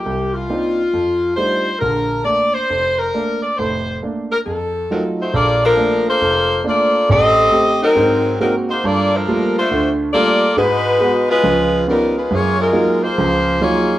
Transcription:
X:1
M:4/4
L:1/8
Q:"Swing" 1/4=138
K:Bb
V:1 name="Saxophone section"
G F4- F c2 | B2 d c2 B2 d | c2 z B A2 [_G,CEB] [A,E_Gc] | [B,FAd] [F,DAB]2 [B,FAc]3 [B,FAd]2 |
[CGAe]3 [_G,CEB]3 [G,CEB] [B,E_Gc] | [B,FAd] [F,DAB]2 [A,DFc]2 z [B,FAd]2 | [_A,E_G_c]3 [A,_DFc]3 [=G,_CEB] [A,DFc] | [B,F_A_d] [_A,_DFB]2 [B,FAc]3 [B,FAd]2 |]
V:2 name="Grand piano"
C,,2 [B,CDE] z F,,2 [G,A,DEF] z | [B,,,D,]2 [A,B,D] z F,,,2 [A,B,D] z | [F,,,A,,]2 [A,B,D] z F,,2 [_G,A,EF] z | B,,,2 [A,B,D] z F,,,2 [A,B,D] z |
A,,,2 [A,CG] z [_A,,C]2 [_A,B,C_G] z | G,,2 [G,A,B,F] z [D,,D,]2 [G,A,B,F] z | [_A,,_A,]2 [A,_C_G] z [_D,,F,]2 [C_DF] z | _G,,2 [_G,_A,B,EF] z [_D,,F,]2 [G,A,B,EF] z |]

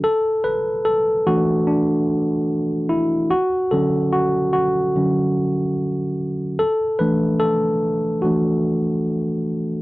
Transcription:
X:1
M:4/4
L:1/8
Q:"Swing 16ths" 1/4=73
K:Edor
V:1 name="Tine electric piano"
A B A F D3 E | F A F F4 z | A B A2 F3 z |]
V:2 name="Tine electric piano"
z3 [E,A,D]3 z2 | z [D,F,C] z2 [D,F,C] z3 | z [E,A,D] z2 [E,A,D] z3 |]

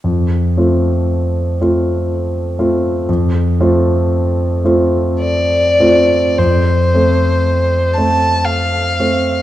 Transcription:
X:1
M:3/4
L:1/8
Q:1/4=58
K:F
V:1 name="Violin"
z6 | z4 d2 | c3 a f2 |]
V:2 name="Grand piano"
F,, [A,CF]2 [A,CF]2 [A,CF] | F,, [A,CF]2 [A,CF]2 [A,CF] | F,, [A,CA]2 [A,CA]2 [A,CA] |]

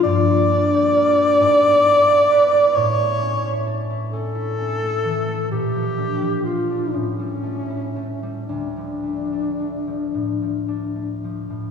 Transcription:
X:1
M:6/8
L:1/16
Q:3/8=42
K:Dm
V:1 name="Alto saxophone"
d12 | ^c4 z2 A6 | G4 F2 ^C6 | D8- D2 z2 |]
V:2 name="Harp"
[G,,B,D] B, D G B G ^G,, =B, E B, =B E | A,, A, ^C E A E C E C A, E, A, | B,, F, D F, F D A,, G, A, E A, G, | D,, F, A, D A, F, A,, F, D A, F, A,, |]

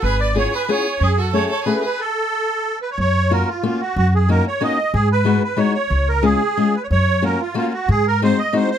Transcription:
X:1
M:3/4
L:1/16
Q:1/4=184
K:F#m
V:1 name="Accordion"
B2 d2 c2 B2 c4 | G2 A2 c2 c2 B2 B2 | A8- A2 B c | [K:F#] c4 A2 E2 E2 F2 |
F2 G2 A2 c2 d4 | G2 B4 B2 c2 c2- | c2 A2 G6 B c | c4 A2 E2 E2 F2 |
G2 A2 ^B2 d2 B2 B z |]
V:2 name="Violin"
G2 B2 G2 G2 G4 | C2 F2 A2 A2 G2 G2 | z12 | [K:F#] z12 |
z12 | z12 | z12 | z12 |
z12 |]
V:3 name="Steel-string acoustic guitar"
z4 [B,C^EG]2 z2 [B,CEG]2 z2 | z4 [A,CFG]2 z2 [A,CFG]2 z2 | z12 | [K:F#] z4 [A,CEF]2 z2 [A,CEF]2 z2 |
z4 [A,CDF]2 z2 [A,CDF]2 z2 | z4 [G,B,DF]2 z2 [G,B,DF]2 z2 | z4 [G,CEG]2 z2 [G,CEG]2 z2 | z4 [A,CEF]2 z2 [A,CEF]2 z2 |
z4 [G,^B,DF]2 z2 [G,B,DF]2 z2 |]
V:4 name="Upright bass" clef=bass
G,,,8 z4 | F,,8 z4 | z12 | [K:F#] F,,8 z4 |
F,,8 z4 | G,,8 z4 | C,,8 z4 | F,,8 z4 |
G,,8 z4 |]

